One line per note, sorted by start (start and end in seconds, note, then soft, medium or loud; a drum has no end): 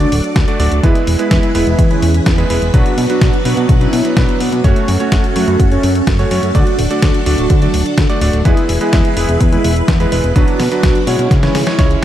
0.00 0.36 F#3 medium
0.00 0.19 A3 medium
0.00 0.19 D4 medium
0.00 0.36 D4 loud
0.00 0.80 F#4 medium
0.00 0.19 F#4 medium
0.00 0.80 A4 medium
0.00 0.82 D5 medium
0.00 0.19 D5 medium
0.00 closed hi-hat soft
0.12 0.21 D1 medium
0.12 open hi-hat loud
0.24 closed hi-hat soft
0.36 0.45 D2 medium
0.36 kick loud
0.36 snare loud
0.36 closed hi-hat medium
0.48 0.57 A3 medium
0.48 0.57 D4 medium
0.48 0.57 F#4 medium
0.48 0.57 D5 loud
0.48 closed hi-hat soft
0.60 0.69 D1 loud
0.60 0.78 A3 medium
0.60 0.78 D4 medium
0.60 0.78 F#4 medium
0.60 0.78 D5 loud
0.60 open hi-hat medium
0.71 0.81 D1 medium
0.71 closed hi-hat soft
0.83 0.93 E2 loud
0.83 1.16 G#3 loud
0.83 1.11 G#3 medium
0.83 1.16 B3 medium
0.83 1.16 E4 medium
0.83 2.72 E4 medium
0.83 1.11 E4 loud
0.83 2.72 G#4 medium
0.83 1.16 B4 loud
0.83 4.61 B4 medium
0.83 kick loud
0.83 closed hi-hat loud
0.95 closed hi-hat soft
1.07 1.16 E1 medium
1.07 open hi-hat loud
1.19 1.52 G#3 medium
1.19 1.46 G#3 medium
1.19 1.52 B3 medium
1.19 1.52 E4 medium
1.19 1.46 E4 loud
1.19 1.52 B4 loud
1.19 closed hi-hat soft
1.31 1.40 E2 medium
1.31 kick loud
1.31 snare loud
1.31 closed hi-hat loud
1.43 closed hi-hat soft
1.55 1.64 E1 medium
1.55 1.88 G#3 medium
1.55 1.82 G#3 medium
1.55 1.88 B3 medium
1.55 1.88 E4 medium
1.55 1.82 E4 loud
1.55 1.88 B4 loud
1.55 open hi-hat medium
1.67 1.76 E1 loud
1.67 closed hi-hat soft
1.79 1.97 E2 medium
1.79 kick loud
1.79 closed hi-hat loud
1.90 2.27 E3 medium
1.90 2.09 G#3 medium
1.90 2.09 B3 medium
1.90 2.27 C#4 loud
1.90 2.09 E4 medium
1.90 2.09 B4 medium
1.90 closed hi-hat soft
2.02 2.21 E1 loud
2.02 open hi-hat loud
2.14 closed hi-hat soft
2.26 2.45 E2 loud
2.26 kick loud
2.26 snare loud
2.26 closed hi-hat loud
2.38 2.47 G#3 medium
2.38 2.47 B3 medium
2.38 2.47 E4 medium
2.38 2.47 B4 loud
2.38 closed hi-hat soft
2.50 2.59 E1 medium
2.50 2.69 G#3 loud
2.50 2.69 B3 medium
2.50 2.69 E4 medium
2.50 2.69 B4 loud
2.50 open hi-hat medium
2.62 2.71 E1 medium
2.62 closed hi-hat soft
2.74 2.83 B1 loud
2.74 3.07 F#3 loud
2.74 3.07 B3 medium
2.74 4.63 B3 medium
2.74 3.07 D4 medium
2.74 3.01 D4 medium
2.74 3.01 F#4 loud
2.74 8.41 F#4 medium
2.74 3.07 B4 loud
2.74 kick loud
2.74 closed hi-hat medium
2.86 closed hi-hat soft
2.98 3.07 B2 medium
2.98 open hi-hat loud
3.10 3.42 F#3 loud
3.10 3.42 B3 medium
3.10 3.37 D4 medium
3.10 3.42 D4 medium
3.10 3.37 F#4 loud
3.10 3.42 B4 loud
3.10 closed hi-hat soft
3.21 3.31 B1 medium
3.21 kick loud
3.21 snare loud
3.21 closed hi-hat loud
3.33 closed hi-hat soft
3.45 3.54 B2 medium
3.45 3.78 F#3 medium
3.45 3.78 B3 medium
3.45 3.73 D4 medium
3.45 3.78 D4 medium
3.45 3.73 F#4 medium
3.45 3.78 B4 loud
3.45 open hi-hat medium
3.57 3.66 B2 loud
3.57 closed hi-hat soft
3.69 3.87 B1 medium
3.69 kick loud
3.69 closed hi-hat medium
3.81 4.00 F#3 medium
3.81 4.00 B3 medium
3.81 4.17 C#4 medium
3.81 4.00 D4 medium
3.81 4.17 E4 loud
3.81 4.00 B4 medium
3.81 closed hi-hat soft
3.93 4.02 B2 medium
3.93 open hi-hat loud
4.05 4.15 F#3 medium
4.05 4.15 B3 medium
4.05 4.15 D4 medium
4.05 4.15 B4 medium
4.05 closed hi-hat soft
4.17 4.26 B1 loud
4.17 4.62 F#3 loud
4.17 4.62 B3 medium
4.17 4.62 D4 medium
4.17 4.62 B4 loud
4.17 kick loud
4.17 snare loud
4.17 closed hi-hat medium
4.29 closed hi-hat soft
4.40 4.50 B2 medium
4.40 open hi-hat medium
4.52 4.62 B2 medium
4.52 closed hi-hat soft
4.64 4.73 F#1 loud
4.64 4.92 A3 medium
4.64 4.97 A3 loud
4.64 6.53 C#4 medium
4.64 4.97 C#4 medium
4.64 4.92 F#4 loud
4.64 4.97 F#4 medium
4.64 8.42 A4 loud
4.64 4.97 C#5 loud
4.64 kick loud
4.64 closed hi-hat medium
4.76 closed hi-hat soft
4.88 4.97 F#2 loud
4.88 open hi-hat loud
5.00 5.27 A3 medium
5.00 5.33 A3 medium
5.00 5.33 C#4 medium
5.00 5.27 F#4 medium
5.00 5.33 F#4 medium
5.00 5.33 C#5 loud
5.00 closed hi-hat soft
5.12 5.21 F#1 medium
5.12 kick loud
5.12 snare loud
5.12 closed hi-hat medium
5.24 closed hi-hat soft
5.36 5.45 F#2 medium
5.36 5.69 A3 medium
5.36 5.63 A3 medium
5.36 5.69 C#4 medium
5.36 5.69 F#4 medium
5.36 5.63 F#4 loud
5.36 5.69 C#5 loud
5.36 open hi-hat medium
5.48 5.57 F#2 loud
5.48 closed hi-hat soft
5.60 5.78 F#1 medium
5.60 kick loud
5.60 closed hi-hat medium
5.71 6.08 A3 medium
5.71 5.90 A3 medium
5.71 6.08 C#4 loud
5.71 5.90 C#4 medium
5.71 5.90 F#4 medium
5.71 5.90 C#5 medium
5.71 closed hi-hat soft
5.83 6.02 F#2 loud
5.83 open hi-hat loud
5.95 closed hi-hat soft
6.07 6.25 F#1 loud
6.07 kick loud
6.07 snare loud
6.07 closed hi-hat medium
6.19 6.28 A3 medium
6.19 6.28 C#4 medium
6.19 6.28 F#4 medium
6.19 6.28 C#5 loud
6.19 closed hi-hat soft
6.31 6.40 F#2 medium
6.31 6.50 A3 medium
6.31 6.50 C#4 medium
6.31 6.50 F#4 medium
6.31 6.50 C#5 loud
6.31 open hi-hat medium
6.43 6.52 F#2 medium
6.43 closed hi-hat soft
6.55 6.64 D2 loud
6.55 6.88 A3 loud
6.55 8.43 D4 medium
6.55 6.82 D4 medium
6.55 6.88 D4 medium
6.55 6.82 F#4 loud
6.55 6.88 F#4 medium
6.55 6.88 D5 loud
6.55 kick loud
6.55 closed hi-hat medium
6.67 closed hi-hat soft
6.79 6.88 D1 loud
6.79 open hi-hat loud
6.91 7.23 A3 loud
6.91 7.18 D4 medium
6.91 7.23 D4 medium
6.91 7.18 F#4 loud
6.91 7.23 F#4 medium
6.91 7.23 D5 loud
6.91 closed hi-hat soft
7.02 7.12 D2 medium
7.02 kick loud
7.02 snare loud
7.02 closed hi-hat medium
7.14 closed hi-hat soft
7.26 7.35 D1 medium
7.26 7.59 A3 medium
7.26 7.59 D4 medium
7.26 7.54 D4 medium
7.26 7.59 F#4 medium
7.26 7.54 F#4 loud
7.26 7.59 D5 loud
7.26 open hi-hat medium
7.38 7.47 D1 loud
7.38 closed hi-hat soft
7.50 7.68 D2 medium
7.50 kick loud
7.50 closed hi-hat medium
7.62 7.98 F#3 medium
7.62 7.81 A3 medium
7.62 7.98 D4 loud
7.62 7.81 D4 medium
7.62 7.81 F#4 medium
7.62 7.81 D5 medium
7.62 closed hi-hat soft
7.74 7.83 D1 medium
7.74 open hi-hat loud
7.86 closed hi-hat soft
7.98 8.07 D2 medium
7.98 kick loud
7.98 snare loud
7.98 closed hi-hat medium
8.10 8.19 A3 medium
8.10 8.19 D4 medium
8.10 8.19 F#4 medium
8.10 8.19 D5 loud
8.10 closed hi-hat soft
8.21 8.31 D1 loud
8.21 8.40 A3 loud
8.21 8.40 D4 medium
8.21 8.40 F#4 medium
8.21 8.40 D5 loud
8.21 open hi-hat medium
8.33 8.43 D1 medium
8.33 closed hi-hat soft
8.45 8.54 E2 loud
8.45 8.78 G#3 loud
8.45 8.78 B3 medium
8.45 8.78 E4 medium
8.45 8.73 E4 medium
8.45 10.34 E4 medium
8.45 8.73 G#4 loud
8.45 10.34 G#4 medium
8.45 8.78 B4 loud
8.45 11.28 B4 medium
8.45 kick loud
8.45 closed hi-hat medium
8.57 closed hi-hat soft
8.69 8.78 E1 medium
8.69 open hi-hat loud
8.81 9.14 G#3 loud
8.81 9.14 B3 medium
8.81 9.14 E4 medium
8.81 9.08 E4 medium
8.81 9.08 G#4 loud
8.81 9.14 B4 loud
8.81 closed hi-hat soft
8.93 9.02 E2 medium
8.93 kick loud
8.93 snare loud
8.93 closed hi-hat medium
9.05 closed hi-hat soft
9.17 9.26 E1 medium
9.17 9.50 G#3 medium
9.17 9.50 B3 medium
9.17 9.50 E4 medium
9.17 9.44 E4 medium
9.17 9.44 G#4 loud
9.17 9.50 B4 loud
9.17 open hi-hat loud
9.29 9.38 E1 loud
9.29 closed hi-hat soft
9.40 9.59 E2 medium
9.40 kick loud
9.40 closed hi-hat medium
9.52 9.89 G#3 medium
9.52 9.71 G#3 medium
9.52 9.71 B3 medium
9.52 9.89 E4 loud
9.52 9.71 E4 medium
9.52 9.71 B4 medium
9.52 closed hi-hat soft
9.64 9.83 E1 loud
9.64 open hi-hat loud
9.76 closed hi-hat soft
9.88 10.06 E2 loud
9.88 kick loud
9.88 snare loud
9.88 closed hi-hat medium
10.00 10.09 G#3 medium
10.00 10.09 B3 medium
10.00 10.09 E4 medium
10.00 10.09 B4 loud
10.00 closed hi-hat soft
10.12 10.21 E1 medium
10.12 10.31 G#3 medium
10.12 10.31 B3 medium
10.12 10.31 E4 medium
10.12 10.31 B4 loud
10.12 open hi-hat loud
10.24 10.33 E1 medium
10.24 closed hi-hat soft
10.36 10.45 B1 loud
10.36 10.69 F#3 loud
10.36 10.69 B3 medium
10.36 10.63 D4 medium
10.36 10.69 D4 medium
10.36 11.30 D4 medium
10.36 10.63 F#4 loud
10.36 11.30 F#4 medium
10.36 10.69 B4 loud
10.36 kick loud
10.36 closed hi-hat medium
10.48 closed hi-hat soft
10.60 10.69 B2 loud
10.60 snare medium
10.60 open hi-hat loud
10.71 11.04 F#3 loud
10.71 11.04 B3 medium
10.71 10.99 D4 medium
10.71 11.04 D4 medium
10.71 10.99 F#4 loud
10.71 11.04 B4 loud
10.71 closed hi-hat soft
10.83 10.93 B1 medium
10.83 kick loud
10.83 snare loud
10.83 closed hi-hat loud
10.95 closed hi-hat soft
11.07 11.16 B2 medium
11.07 11.40 G#3 medium
11.07 11.34 C#4 medium
11.07 11.40 C#4 medium
11.07 11.40 E4 medium
11.07 11.34 F#4 loud
11.07 11.40 C#5 loud
11.07 open hi-hat loud
11.19 11.28 B2 loud
11.19 closed hi-hat soft
11.31 11.49 C#2 medium
11.31 12.05 C#4 medium
11.31 12.05 E4 medium
11.31 12.05 G#4 medium
11.31 kick loud
11.31 snare medium
11.31 closed hi-hat loud
11.43 11.79 E3 medium
11.43 11.62 G#3 medium
11.43 11.62 C#4 medium
11.43 11.79 C#4 loud
11.43 11.62 E4 medium
11.43 11.62 C#5 medium
11.43 snare medium
11.43 closed hi-hat soft
11.55 11.64 C#3 medium
11.55 snare medium
11.55 open hi-hat loud
11.67 11.77 G#3 medium
11.67 11.77 C#4 medium
11.67 11.77 E4 medium
11.67 11.77 C#5 loud
11.67 snare medium
11.67 closed hi-hat soft
11.79 11.97 C#2 medium
11.79 12.05 G#3 loud
11.79 12.05 C#4 medium
11.79 12.05 E4 medium
11.79 12.05 C#5 loud
11.79 kick loud
11.79 snare medium
11.79 closed hi-hat medium
11.91 closed hi-hat soft